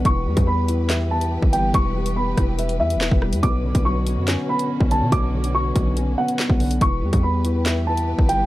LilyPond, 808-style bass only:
\new Staff \with { instrumentName = "808-style bass" } { \clef bass \time 4/4 \key e \dorian \tempo 4 = 142 e,,8 e,16 e,2~ e,8 g,,8. | e,,4. e,,4 e,16. e,,16. e,,8 e,16 | b,,8. b,,4 fis,8 r4 b,,8 b,16 | b,,4. b,,4 r8. b,,8. |
e,,8 e,16 e,2~ e,8 g,,8. | }